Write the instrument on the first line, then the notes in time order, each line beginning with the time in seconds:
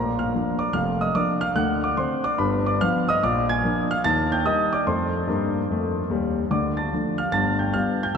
grand piano
Already playing: A#1 A#2 A#4 A#5
0.19 F5 F6
0.34 F3 A#3 D4
0.59 D5 D6
0.73 F1 F2 F5 F6
1.01 D#5 D#6
1.15 F3 A#3 D4 D5 D6
1.41 F5 F6
1.55 D2 D3 F#5 F#6
1.84 D5 D6
1.97 D3 C4 D4 C5 C6
2.24 D5 D6
2.38 G1 G2 B4 B5
2.66 D5 D6
2.81 F3 B3 D4 F5 F6
3.09 D#5 D#6
3.23 A#1 A#2 D5 D6
3.49 G#5 G#6
3.64 F3 A#3 D4
3.91 F5 F6
4.04 D#2 D#3 A5 A6
4.32 G5 G6
4.45 G3 A#3 D#4 D#5 D#6
4.73 D5 D6
4.87 F2 A3 C5 C6
5.27 G2 A#3
5.70 F2 A3
6.09 D#2 G3
6.50 D2 D3 D5 D6
6.77 A5 A6
6.93 F3 A3 D4
7.18 F5 F6
7.32 G1 G2 A5 A6
7.59 G5 G6
7.74 G3 B3 D4 F5 F6
8.03 G5 G6